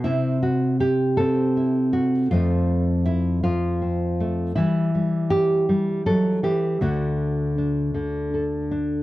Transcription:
0.04 2.27 C3 medium
0.04 1.20 C4 medium
0.04 0.42 E4 medium
0.42 0.80 F#4 medium
0.80 1.92 G4 loud
1.17 2.27 C4 medium
1.17 2.30 A4 loud
1.57 2.27 E4 soft
1.93 2.31 F#4 medium
2.31 4.51 F2 medium
2.31 3.42 F3 medium
2.31 4.19 A3 medium
2.31 3.81 C4 medium
2.31 3.05 F4 medium
3.05 3.43 E4 medium
3.43 4.51 F3 medium
3.43 4.56 F4 medium
3.82 4.52 C4 soft
4.20 4.52 A3 medium
4.55 6.42 E3 medium
4.55 4.94 G3 medium
4.55 6.06 E4 medium
4.95 5.68 G3 soft
5.30 6.06 G4 loud
5.69 6.06 G3 medium
6.06 6.43 F#3 medium
6.06 6.43 A4 loud
6.43 6.81 E3 medium
6.43 6.81 G4 medium
6.81 9.03 D2 medium
6.81 7.93 D3 medium
6.81 7.57 D4 medium
6.81 9.03 F#4 medium
7.58 8.70 D4 soft
7.94 9.03 D3 medium
8.34 9.03 A4 soft
8.71 9.03 D4 soft

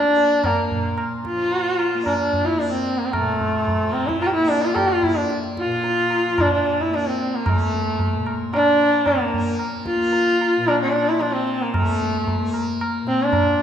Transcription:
0.00 0.70 A#2 medium
0.00 1.33 F3 medium
0.00 0.08 A#3 medium
0.00 0.47 D4 loud
0.08 1.94 A#3 medium
0.17 tabla te medium
0.44 0.99 A#3 medium
0.44 tabla na medium
0.44 tabla ge medium
0.71 3.17 A#2 medium
0.71 tabla ge soft
0.98 tabla na medium
1.25 2.03 F4 medium
1.25 tabla ke medium
1.33 3.78 F3 medium
1.51 tabla tin medium
1.79 tabla na medium
1.95 2.55 A#3 soft
2.06 2.18 D4 medium
2.06 tabla na medium
2.06 tabla ge medium
2.18 2.45 D4 medium
2.33 tabla ge soft
2.44 2.60 E4 medium
2.44 2.47 F4 medium
2.55 4.40 A#3 medium
2.55 2.71 D4 medium
2.55 tabla te medium
2.72 2.99 C4 medium
2.87 tabla te medium
2.98 3.06 A#3 medium
3.05 3.14 C4 medium
3.12 3.94 A3 medium
3.12 tabla na medium
3.12 tabla ge medium
3.17 5.64 A#2 medium
3.41 tabla ge medium
3.68 tabla tin medium
3.68 tabla ge medium
3.79 6.27 F3 soft
3.93 4.08 C4 medium
3.93 tabla na medium
4.07 4.20 E4 medium
4.07 tabla ke medium
4.21 4.28 F4 medium
4.21 tabla na medium
4.26 4.29 G4 medium
4.34 4.50 E4 medium
4.40 5.03 A#3 medium
4.49 4.63 D4 medium
4.49 tabla te medium
4.62 4.76 F4 medium
4.74 4.90 G4 medium
4.74 4.77 A4 medium
4.74 tabla na medium
4.74 tabla ge medium
4.88 5.05 F4 medium
5.03 6.90 A#3 medium
5.03 5.19 E4 medium
5.03 tabla ge soft
5.17 5.31 D4 medium
5.30 tabla te medium
5.44 tabla te soft
5.57 6.42 F4 loud
5.57 tabla ke medium
5.64 8.13 A#2 medium
5.72 tabla te medium
5.84 tabla tin medium
6.10 tabla na medium
6.28 8.74 F3 soft
6.38 6.53 D4 medium
6.38 tabla na medium
6.38 tabla ge medium
6.54 6.83 D4 medium
6.67 tabla te medium
6.81 6.96 E4 medium
6.90 7.51 A#3 soft
6.94 7.10 D4 medium
6.94 tabla te medium
7.08 7.36 C4 medium
7.19 tabla te soft
7.35 7.50 A#3 medium
7.46 8.28 A3 medium
7.46 tabla na medium
7.46 tabla ge medium
7.51 9.35 A#3 medium
7.73 tabla ge medium
7.99 tabla tin medium
7.99 tabla ge medium
8.13 10.56 A#2 soft
8.27 tabla na medium
8.54 9.08 D4 loud
8.54 tabla na medium
8.74 11.18 F3 medium
8.81 tabla te medium
9.06 9.60 A#3 medium
9.06 tabla na medium
9.06 tabla ge medium
9.34 9.96 A#3 medium
9.34 tabla ge soft
9.59 tabla na medium
9.86 10.69 F4 loud
9.86 tabla ke medium
9.96 11.81 A#3 medium
10.13 tabla tin medium
10.41 tabla na medium
10.57 13.02 A#2 medium
10.68 10.81 D4 medium
10.68 tabla na medium
10.81 11.10 D4 medium
10.94 tabla te medium
11.08 11.22 E4 medium
11.19 13.62 F3 soft
11.19 11.35 D4 medium
11.19 tabla te medium
11.34 11.64 C4 medium
11.48 tabla te medium
11.62 11.75 A#3 medium
11.74 12.52 A3 medium
11.74 tabla na medium
11.74 tabla ge medium
11.81 12.41 A#3 medium
12.01 tabla ge medium
12.27 tabla tin medium
12.27 tabla ge medium
12.41 13.62 A#3 medium
12.54 tabla na medium
12.81 tabla na medium
13.02 13.62 A#2 medium
13.07 13.24 C4 medium
13.07 tabla te medium
13.23 13.62 D4 medium
13.33 tabla na medium
13.33 tabla ge medium

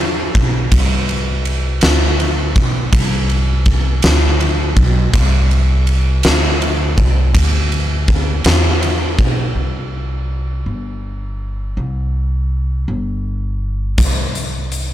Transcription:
0.00 0.31 E2 medium
0.35 0.70 B1 medium
0.35 kick medium
0.35 ride soft
0.72 1.78 C2 medium
0.72 kick loud
0.72 ride medium
1.09 ride soft
1.45 ride soft
1.81 2.52 D2 medium
1.81 snare loud
1.81 ride medium
2.20 ride soft
2.56 2.91 B1 medium
2.56 kick medium
2.56 ride soft
2.93 3.99 C2 loud
2.93 kick loud
2.93 ride medium
3.30 ride soft
3.66 kick medium
3.66 ride soft
4.02 4.73 D2 medium
4.02 snare loud
4.02 ride medium
4.41 ride soft
4.76 5.11 B1 loud
4.76 kick medium
4.76 ride soft
5.13 6.20 C2 loud
5.13 kick loud
5.13 ride medium
5.51 ride soft
5.87 ride soft
6.23 6.94 D2 loud
6.23 snare loud
6.23 ride medium
6.62 ride soft
6.97 7.32 C2 medium
6.97 kick medium
6.97 ride soft
7.34 8.41 D2 medium
7.34 kick loud
7.34 ride medium
7.72 ride soft
8.08 kick medium
8.08 ride soft
8.44 9.15 E2 medium
8.44 snare loud
8.44 ride medium
8.83 ride soft
9.19 9.53 B1 medium
9.19 kick medium
9.19 ride soft
9.55 10.62 C2 medium
10.66 11.73 G1 medium
11.77 12.84 C2 medium
12.88 13.95 G1 medium
13.98 14.94 C2 medium
13.98 kick loud
13.98 closed hi-hat medium
14.35 closed hi-hat soft
14.72 closed hi-hat soft

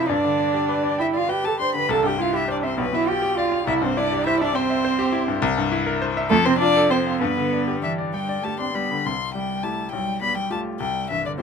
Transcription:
0.00 0.13 F2 medium
0.00 0.13 C3 medium
0.00 0.11 E4 medium
0.00 0.12 F4 medium
0.00 0.12 A4 medium
0.00 0.13 C5 medium
0.00 0.13 F5 medium
0.00 0.13 A5 medium
0.09 1.86 G2 medium
0.09 1.01 D4 medium
0.09 0.98 D5 medium
0.25 0.49 D3 medium
0.39 0.64 D4 soft
0.54 0.79 G4 soft
0.69 0.93 B4 soft
0.84 1.08 D5 soft
0.98 1.18 E4 medium
0.98 1.06 E5 medium
0.98 1.23 G5 medium
1.13 1.32 F4 medium
1.13 1.38 D5 soft
1.13 1.31 F5 medium
1.29 1.45 G4 medium
1.29 1.53 B4 soft
1.29 1.46 G5 medium
1.44 1.69 G4 soft
1.44 1.52 A4 medium
1.44 1.59 A5 medium
1.59 1.84 D4 soft
1.59 1.75 C5 medium
1.59 1.75 C6 medium
1.74 1.90 D3 soft
1.74 1.91 B4 medium
1.74 1.92 B5 medium
1.89 2.76 C2 medium
1.89 2.08 A4 medium
1.89 2.05 A5 medium
2.03 2.28 G2 soft
2.03 2.19 G4 medium
2.03 2.23 G5 medium
2.18 2.43 E4 soft
2.18 2.37 F4 medium
2.18 2.35 F5 medium
2.33 2.48 E4 medium
2.33 2.58 G4 medium
2.33 2.50 E5 medium
2.48 2.66 D4 medium
2.48 2.73 C5 soft
2.48 2.57 D5 medium
2.63 2.77 C4 medium
2.63 2.79 C5 medium
2.63 2.79 E5 medium
2.77 3.64 B1 medium
2.77 2.84 B3 medium
2.77 2.96 B4 medium
2.92 3.17 B2 soft
2.92 3.10 E4 medium
2.92 3.08 E5 medium
3.07 3.32 F4 soft
3.07 3.38 G4 medium
3.07 3.40 G5 medium
3.22 3.47 G4 medium
3.37 3.66 F4 medium
3.37 3.62 D5 medium
3.37 3.67 F5 medium
3.52 3.67 F5 medium
3.67 5.37 C2 medium
3.67 3.86 E4 loud
3.67 3.73 E5 medium
3.81 4.06 G2 medium
3.81 3.99 C4 medium
3.81 3.99 C5 medium
3.97 4.28 D4 medium
3.97 4.21 E4 medium
3.97 4.26 D5 medium
4.13 4.35 G4 medium
4.26 4.43 E4 loud
4.26 4.50 C5 medium
4.26 4.40 E5 medium
4.40 4.57 D4 medium
4.40 4.57 D5 medium
4.40 4.64 E5 medium
4.55 5.41 C4 loud
4.55 5.41 C5 medium
4.55 4.78 G5 medium
4.70 4.93 E5 medium
4.85 5.07 C5 medium
4.99 5.21 G4 medium
5.12 5.35 E4 medium
5.28 5.42 G2 medium
5.42 6.28 C2 loud
5.57 5.80 G2 medium
5.72 5.95 E4 medium
5.86 6.10 A#4 medium
6.02 6.25 C5 medium
6.17 6.31 E5 medium
6.30 7.19 F2 medium
6.30 6.36 A3 loud
6.30 6.47 A4 loud
6.45 6.70 C3 medium
6.45 6.59 C4 loud
6.45 6.58 C5 medium
6.59 6.92 D4 loud
6.59 6.85 F4 medium
6.59 6.92 D5 loud
6.77 7.00 A4 medium
6.90 7.22 C4 medium
6.90 7.21 C5 medium
6.90 7.16 C5 medium
7.07 7.22 F5 soft
7.20 9.01 G2 medium
7.20 7.82 B3 medium
7.20 7.81 B4 medium
7.37 7.62 D3 medium
7.52 7.77 D4 soft
7.68 7.92 G4 soft
7.83 8.15 E3 medium
7.83 8.07 D4 soft
7.83 7.91 E5 medium
7.98 8.22 D5 soft
8.14 8.42 G3 medium
8.14 8.38 G5 medium
8.14 8.45 G5 medium
8.29 8.53 D5 soft
8.43 8.58 A3 medium
8.43 8.69 G4 soft
8.43 8.59 A5 medium
8.59 8.73 C4 medium
8.59 8.84 D4 soft
8.59 8.76 C6 medium
8.73 8.99 G3 soft
8.73 9.04 B3 medium
8.73 9.07 B5 medium
8.91 9.05 D3 soft
9.05 9.91 C2 soft
9.05 9.13 C4 soft
9.05 9.34 C6 medium
9.34 9.65 G3 soft
9.34 9.81 G3 soft
9.34 9.65 G5 medium
9.63 9.93 A3 soft
9.63 9.90 E4 soft
9.63 9.90 G4 soft
9.63 9.91 A5 medium
9.92 10.78 B1 soft
9.92 10.22 G3 medium
9.92 10.21 G5 medium
10.21 10.68 G3 soft
10.21 10.37 B3 medium
10.21 10.36 B5 medium
10.36 10.52 G3 medium
10.36 10.51 G5 medium
10.50 10.81 A3 soft
10.50 10.77 F4 soft
10.50 10.77 G4 soft
10.50 10.60 A5 medium
10.80 11.42 C2 soft
10.80 11.09 G3 medium
10.80 11.09 G5 medium
11.10 11.42 G2 soft
11.10 11.16 E3 soft
11.10 11.24 E5 medium
11.24 11.41 D3 soft
11.24 11.31 D5 medium
11.38 11.42 C4 soft
11.38 11.42 E4 soft
11.38 11.42 G4 soft

